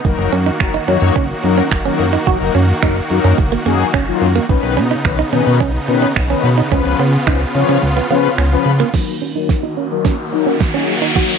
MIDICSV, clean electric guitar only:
0, 0, Header, 1, 3, 480
1, 0, Start_track
1, 0, Key_signature, 6, "major"
1, 0, Tempo, 555556
1, 42, Time_signature, 4, 2, 24, 8
1, 9836, End_track
2, 0, Start_track
2, 0, Title_t, "Clean electric guitar"
2, 0, Program_c, 0, 27
2, 281, Note_on_c, 0, 61, 72
2, 360, Note_off_c, 0, 61, 0
2, 401, Note_on_c, 0, 63, 76
2, 480, Note_off_c, 0, 63, 0
2, 642, Note_on_c, 0, 63, 76
2, 721, Note_off_c, 0, 63, 0
2, 761, Note_on_c, 0, 61, 80
2, 840, Note_off_c, 0, 61, 0
2, 1001, Note_on_c, 0, 61, 82
2, 1080, Note_off_c, 0, 61, 0
2, 1361, Note_on_c, 0, 61, 76
2, 1441, Note_off_c, 0, 61, 0
2, 1602, Note_on_c, 0, 61, 72
2, 1681, Note_off_c, 0, 61, 0
2, 1840, Note_on_c, 0, 63, 74
2, 1920, Note_off_c, 0, 63, 0
2, 1962, Note_on_c, 0, 66, 90
2, 2041, Note_off_c, 0, 66, 0
2, 2202, Note_on_c, 0, 61, 64
2, 2281, Note_off_c, 0, 61, 0
2, 2442, Note_on_c, 0, 63, 77
2, 2521, Note_off_c, 0, 63, 0
2, 2802, Note_on_c, 0, 61, 72
2, 2881, Note_off_c, 0, 61, 0
2, 3042, Note_on_c, 0, 58, 71
2, 3121, Note_off_c, 0, 58, 0
2, 3162, Note_on_c, 0, 58, 70
2, 3241, Note_off_c, 0, 58, 0
2, 3402, Note_on_c, 0, 61, 79
2, 3481, Note_off_c, 0, 61, 0
2, 3763, Note_on_c, 0, 58, 87
2, 3842, Note_off_c, 0, 58, 0
2, 4122, Note_on_c, 0, 61, 71
2, 4201, Note_off_c, 0, 61, 0
2, 4242, Note_on_c, 0, 63, 76
2, 4321, Note_off_c, 0, 63, 0
2, 4483, Note_on_c, 0, 63, 77
2, 4562, Note_off_c, 0, 63, 0
2, 4603, Note_on_c, 0, 61, 85
2, 4682, Note_off_c, 0, 61, 0
2, 4842, Note_on_c, 0, 61, 83
2, 4921, Note_off_c, 0, 61, 0
2, 5204, Note_on_c, 0, 61, 76
2, 5282, Note_off_c, 0, 61, 0
2, 5445, Note_on_c, 0, 61, 69
2, 5523, Note_off_c, 0, 61, 0
2, 5683, Note_on_c, 0, 63, 73
2, 5762, Note_off_c, 0, 63, 0
2, 5804, Note_on_c, 0, 61, 90
2, 5883, Note_off_c, 0, 61, 0
2, 6044, Note_on_c, 0, 59, 66
2, 6123, Note_off_c, 0, 59, 0
2, 6284, Note_on_c, 0, 63, 77
2, 6363, Note_off_c, 0, 63, 0
2, 6645, Note_on_c, 0, 61, 69
2, 6723, Note_off_c, 0, 61, 0
2, 6884, Note_on_c, 0, 59, 72
2, 6963, Note_off_c, 0, 59, 0
2, 7004, Note_on_c, 0, 59, 68
2, 7083, Note_off_c, 0, 59, 0
2, 7243, Note_on_c, 0, 61, 74
2, 7322, Note_off_c, 0, 61, 0
2, 7603, Note_on_c, 0, 58, 84
2, 7682, Note_off_c, 0, 58, 0
2, 7963, Note_on_c, 0, 61, 74
2, 8042, Note_off_c, 0, 61, 0
2, 8083, Note_on_c, 0, 63, 72
2, 8162, Note_off_c, 0, 63, 0
2, 8322, Note_on_c, 0, 63, 76
2, 8401, Note_off_c, 0, 63, 0
2, 8442, Note_on_c, 0, 61, 78
2, 8521, Note_off_c, 0, 61, 0
2, 8680, Note_on_c, 0, 61, 81
2, 8760, Note_off_c, 0, 61, 0
2, 9040, Note_on_c, 0, 61, 78
2, 9120, Note_off_c, 0, 61, 0
2, 9280, Note_on_c, 0, 61, 75
2, 9360, Note_off_c, 0, 61, 0
2, 9520, Note_on_c, 0, 63, 73
2, 9600, Note_off_c, 0, 63, 0
2, 9640, Note_on_c, 0, 66, 91
2, 9720, Note_off_c, 0, 66, 0
2, 9836, End_track
3, 0, Start_track
3, 0, Title_t, "Muted clean electric guitar strokes"
3, 161, Note_on_c, 9, 29, 45
3, 248, Note_off_c, 9, 29, 0
3, 522, Note_on_c, 9, 29, 43
3, 608, Note_off_c, 9, 29, 0
3, 1241, Note_on_c, 9, 29, 45
3, 1327, Note_off_c, 9, 29, 0
3, 1721, Note_on_c, 9, 29, 46
3, 1807, Note_off_c, 9, 29, 0
3, 2082, Note_on_c, 9, 29, 44
3, 2168, Note_off_c, 9, 29, 0
3, 2562, Note_on_c, 9, 29, 45
3, 2648, Note_off_c, 9, 29, 0
3, 2921, Note_on_c, 9, 29, 44
3, 3008, Note_off_c, 9, 29, 0
3, 3643, Note_on_c, 9, 29, 47
3, 3729, Note_off_c, 9, 29, 0
3, 4001, Note_on_c, 9, 29, 44
3, 4087, Note_off_c, 9, 29, 0
3, 4363, Note_on_c, 9, 29, 45
3, 4449, Note_off_c, 9, 29, 0
3, 5083, Note_on_c, 9, 29, 43
3, 5169, Note_off_c, 9, 29, 0
3, 5564, Note_on_c, 9, 29, 45
3, 5651, Note_off_c, 9, 29, 0
3, 5924, Note_on_c, 9, 29, 41
3, 6010, Note_off_c, 9, 29, 0
3, 6405, Note_on_c, 9, 29, 44
3, 6491, Note_off_c, 9, 29, 0
3, 6764, Note_on_c, 9, 29, 44
3, 6851, Note_off_c, 9, 29, 0
3, 7483, Note_on_c, 9, 29, 45
3, 7570, Note_off_c, 9, 29, 0
3, 7843, Note_on_c, 9, 29, 44
3, 7930, Note_off_c, 9, 29, 0
3, 8922, Note_on_c, 9, 29, 44
3, 9008, Note_off_c, 9, 29, 0
3, 9400, Note_on_c, 9, 29, 44
3, 9486, Note_off_c, 9, 29, 0
3, 9759, Note_on_c, 9, 29, 42
3, 9836, Note_off_c, 9, 29, 0
3, 9836, End_track
0, 0, End_of_file